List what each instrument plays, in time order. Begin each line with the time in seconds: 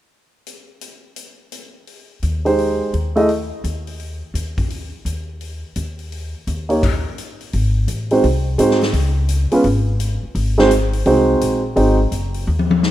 0.47 closed hi-hat
0.81 closed hi-hat
1.16 closed hi-hat
1.52 closed hi-hat
1.87 open hi-hat
2.22 upright bass D#2, closed hi-hat
2.45 grand piano G#3 D#4 G4 C5, open hi-hat
2.58 open hi-hat
2.93 upright bass D#2, closed hi-hat
3.16 grand piano A3 E4 G#4 D#5, open hi-hat
3.29 open hi-hat
3.64 upright bass D#2, closed hi-hat
3.87 open hi-hat
3.99 open hi-hat
4.34 upright bass D#2, closed hi-hat
4.58 kick, open hi-hat
4.70 open hi-hat
5.05 upright bass D#2, closed hi-hat
5.41 open hi-hat
5.76 upright bass D#2, closed hi-hat
5.99 open hi-hat
6.12 open hi-hat
6.47 upright bass D#2, closed hi-hat
6.69 grand piano A#3 D#4 G4 C#5, open hi-hat
6.83 kick, open hi-hat, crash
7.18 closed hi-hat
7.41 open hi-hat
7.53 upright bass G#1, open hi-hat
7.88 upright bass A1, closed hi-hat
8.11 grand piano G#3 C4 D#4 F#4 C5, open hi-hat
8.24 upright bass C2, open hi-hat
8.58 upright bass G#2, grand piano G#3 C4 D#4 F#4 C5, closed hi-hat
8.71 snare
8.81 snare, open hi-hat
8.93 upright bass C#2, open hi-hat
9.29 closed hi-hat
9.51 grand piano G#3 B3 C#4 F4 B4, open hi-hat
9.64 upright bass G#1, open hi-hat
10.00 closed hi-hat
10.23 muted upright bass stroke
10.35 upright bass G#1, open hi-hat
10.58 grand piano G#3 C4 D#4 F#4 C5, snare
10.71 closed hi-hat
10.93 open hi-hat
11.06 upright bass C2, grand piano G#3 C4 D#4 F#4 C5, open hi-hat
11.41 upright bass A#1, closed hi-hat
11.76 upright bass G#1, grand piano G#3 C4 D#4 F#4 C5, open hi-hat
12.12 upright bass F#1, closed hi-hat
12.34 open hi-hat
12.47 upright bass D#2
12.59 high tom
12.71 high tom
12.83 snare